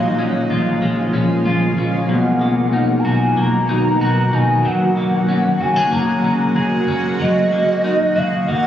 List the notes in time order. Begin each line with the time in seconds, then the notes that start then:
Already playing: A#1 A#2 C#3 F3 G#3 A#3 F4 F5
0.19 C#4
0.50 A#1 F4
0.81 A#1 G#3
1.13 A#1 C#4
1.45 A#1 F4
1.76 A#1 C#4
2.09 B1 B2 D#3 F#3 F#4 F#5
2.41 A#3
2.73 D#4
2.99 A#5
3.04 B1 F#4 G#5
3.36 B1 A#3 A#5
3.69 B1 D#4
4.00 B1 F#4
4.32 B1 D#4 G#5
4.63 F#1 C#3 F#3 G#3 F#4 F#5
4.97 A#3
5.29 C#4
5.60 F#1 F#4 G#5
5.76 G#4
5.92 F#1 A#3 A#5
6.24 F#1 C#4
6.56 F#1 G#4
6.88 F#1 C#4
7.20 F#1 A#2 D#3 F#3 D#4 D#5
7.52 A#3
7.84 D#4
8.16 F#1 F#4 F5
8.48 F#1 A#3 F#5